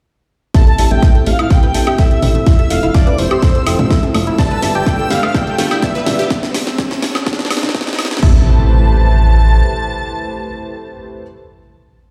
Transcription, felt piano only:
0.54 C4 E4 G4 A4 E5
0.78 C4 E4 G4 A4 E5
0.91 C4 E4 G4 A4 E5
1.02 C4 E4 G4 A4 E5
1.26 C4 E4 G4 A4 E5
1.50 C4 E4 G4 A4 E5
1.74 C4 E4 G4 A4 A5
1.87 C4 E4 G4 A4 E5
1.99 C4 E4 G4 A4 E5
2.22 C4 E4 G4 A4 E5
2.47 C4 E4 F4 E5
2.70 C4 E4 F4 A4 E5
2.83 C4 E4 F4 A4 E5
2.94 C4 E4 F4 A4 E5
3.19 C4 E4 F4 A4 E5
3.42 C4 E4 F4 A4 E5
3.66 C4 E4 F4 A4 G5
3.79 C4 E4 F4 A4 E5
3.90 C4 E4 F4 A4 E5
4.14 C4 E4 F4 A4 E5
4.38 B3 D4 F4 G4 D5
4.62 B3 D4 F4 G4 D5
4.75 B3 D4 F4 G4 D5
4.86 B3 D4 F4 G4 D5
5.10 B3 D4 F4 G4 D5
5.34 B3 D4 F4 G4 D5
5.58 B3 D4 F4 G4 F5
5.71 B3 D4 F4 G4 D5
5.82 B3 D4 F4 G4 D5
6.06 B3 D4 F4 G4 D5
8.22 C4 E4 G4 A4 E5

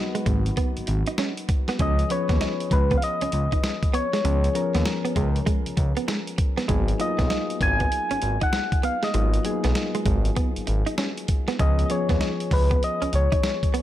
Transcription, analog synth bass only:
0.27 G#1
0.77 G#1
0.88 G#1
1.80 C#2
2.30 D#2
2.71 C#2
3.22 C#2
3.33 C#2
4.25 C#2
4.75 D#2
5.16 C#2
5.67 C#2
5.78 C#2
6.69 G#1
7.19 B1
7.61 G#1
8.11 G#1
8.22 G#1
9.15 G#1
9.65 B1
10.06 G#1
10.57 G#1
10.68 G#1
11.60 C#2
12.09 D#2
12.51 C#2
13.02 C#2
13.13 C#2

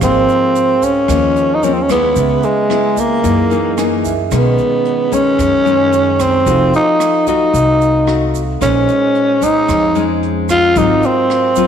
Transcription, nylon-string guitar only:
0.01 G#2 F3 A#3 C4
1.08 D#3 F3 A#3
1.63 F3 A#3 C4
1.89 G#3 B3 E4
2.17 C#3
2.69 G#3 B3 E4
3.23 F#2 E3 A#3 D#4
3.50 E3 A#3 D#4
3.77 E3 A#3 D#4
4.31 B2 D#3 G#3 C#4
5.12 D#3 G#3 C#4
5.39 F#2
5.65 D#3 G#3 C#4
6.46 F3 A3 D#4 F#4
7.27 A3 D#4 F#4
7.54 C3
8.07 A3 D#4 F#4
8.61 A#2 G#3 C#4 D#4
9.41 G#3 C#4 D#4
9.67 F3
9.95 G#3 C#4 D#4
10.76 G#2 F#3 C4 F4
11.57 F#3 C4 F4

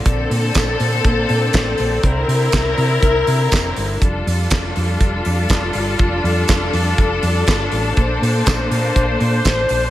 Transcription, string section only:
Already playing: D3
0.06 A#3 C4 A4
2.03 E4 A#4
4.01 G3 D4 F4 A4
7.97 A#3 C5

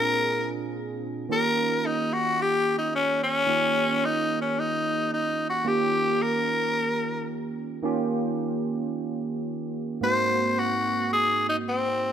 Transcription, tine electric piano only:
Already playing: A#2 C4 D4 F4 G#4
1.29 D#3 A#3 C#4 F4 G4
3.46 D#3 A#3 C#4 F4 G4
5.64 D#3 A#3 C#4 F4 G4
7.82 D#3 A#3 C#4 F4 G4
10.01 G#2 A#3 C4 D#4 F#4

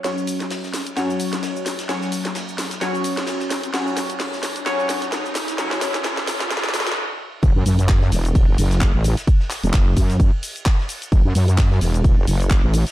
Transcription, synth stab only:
0.04 F#3 C#4 C#5
0.97 F#3 C#4 C#5
1.89 F#3 C#4 C#5
2.81 F#3 C#4 C#5
3.74 F#3 C#4 C#5
4.66 F#3 C#4 C#5
5.58 F#3 C#4 C#5

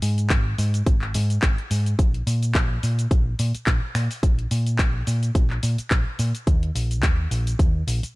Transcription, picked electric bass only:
0.02 G#2
0.30 G#1
0.58 G#2
0.86 G#1
1.15 G#2
1.43 G#1
1.71 G#2
1.99 A#1
2.27 A#2
2.55 A#1
2.83 A#2
3.11 A#1
3.40 A#2
3.55 muted picked electric bass stroke
3.67 A#1
3.95 A#2
4.23 A#1
4.51 A#2
4.79 A#1
5.07 A#2
5.35 A#1
5.63 A#2
5.79 muted picked electric bass stroke
5.91 A#1
6.19 A#2
6.47 D#2
6.75 A#1
7.03 D#2
7.31 A#1
7.59 D#2
7.87 A#1
8.03 muted picked electric bass stroke

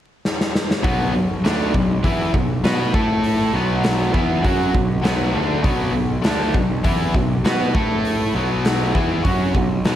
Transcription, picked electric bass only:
0.84 B1
1.14 B1
1.45 D2
1.74 B1
2.04 E2
2.34 B1
2.64 B2
2.93 A2
3.54 B1
4.15 E2
4.44 F#2
4.74 B1
5.03 B1
5.34 D2
5.65 B1
5.94 B1
6.24 D2
6.55 B1
6.85 E2
7.15 B1
7.44 B2
7.75 A2
8.35 B1
8.96 E2
9.25 F#2
9.55 B1
9.85 B1

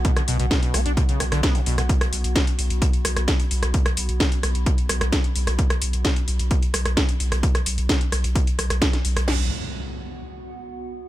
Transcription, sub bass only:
0.28 B1
0.40 B1
0.74 B1
0.86 B1
1.20 B1
1.32 B1
1.66 B1
1.78 B1
2.12 B1
2.24 B1
2.59 B1
2.70 B1
3.05 B1
3.16 B1
3.51 B1
3.63 B1
3.97 B1
4.09 B1
4.43 B1
4.55 B1
4.89 B1
5.01 B1
5.36 B1
5.47 B1
5.82 B1
5.93 B1
6.28 B1
6.39 B1
6.74 B1
6.85 B1
7.20 B1
7.32 B1
7.66 B1
7.78 B1
8.12 B1
8.24 B1
8.58 B1
8.70 B1
9.05 B1
9.16 B1
9.28 B1

